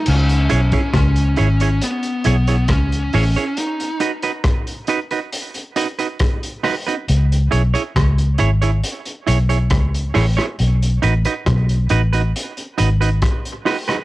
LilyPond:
<<
  \new Staff \with { instrumentName = "Clean electric guitar" } { \time 4/4 \key cis \minor \tempo 4 = 68 r8 <e' gis' cis''>16 <e' gis' cis''>16 r8 <e' gis' cis''>16 <e' gis' cis''>16 r8 <e' gis' cis''>16 <e' gis' cis''>16 r8 <e' gis' cis''>16 <e' gis' cis''>16 | r8 <dis' fis' b'>16 <dis' fis' b'>16 r8 <dis' fis' b'>16 <dis' fis' b'>16 r8 <dis' fis' b'>16 <dis' fis' b'>16 r8 <dis' fis' b'>16 <dis' fis' b'>16 | r8 <e' gis' cis''>16 <e' gis' cis''>16 r8 <e' gis' cis''>16 <e' gis' cis''>16 r8 <e' gis' cis''>16 <e' gis' cis''>16 r8 <e' gis' cis''>16 <e' gis' cis''>16 | r8 <dis' fis' b'>16 <dis' fis' b'>16 r8 <dis' fis' b'>16 <dis' fis' b'>16 r8 <dis' fis' b'>16 <dis' fis' b'>16 r8 <dis' fis' b'>16 <dis' fis' b'>16 | }
  \new Staff \with { instrumentName = "Lead electric guitar" } { \time 4/4 \key cis \minor cis'4 cis'4 b4 cis'8 cis'8 | dis'8 r2. r8 | r1 | r1 | }
  \new Staff \with { instrumentName = "Fingered electric bass" } { \clef bass \time 4/4 \key cis \minor cis,8 b,,16 r16 cis,8 gis,,8 r8 b,,8 cis,8 a,,16 r16 | r1 | cis,8 b,,16 r16 cis,8 gis,,8 r8 b,,8 cis,8 a,,16 r16 | b,,8 a,,16 r16 b,,8 a,,8 r8 gis,,8 r4 | }
  \new DrumStaff \with { instrumentName = "Drums" } \drummode { \time 4/4 cymc16 hh16 hh16 <hh bd>16 <hh bd ss>16 hh16 hh16 hh16 hh16 hh16 hh16 hh16 <hh bd ss>16 hh16 hho16 hh16 | hh16 hh16 hh16 hh16 <hh bd ss>16 hh16 hh16 hh16 hh16 hh16 hh16 hh16 <hh bd ss>16 hh16 <hho ss>16 hh16 | hh16 hh16 hh16 hh16 <hh bd ss>16 hh16 hh16 hh16 hh16 hh16 hh16 hh16 <hh bd ss>16 hh16 <hho ss>16 <hh ss>16 | hh16 hh16 hh16 hh16 <hh bd ss>16 hh16 hh16 hh16 hh16 hh16 hh16 hh16 <hh bd ss>16 hh16 <hho ss>16 <hh ss>16 | }
>>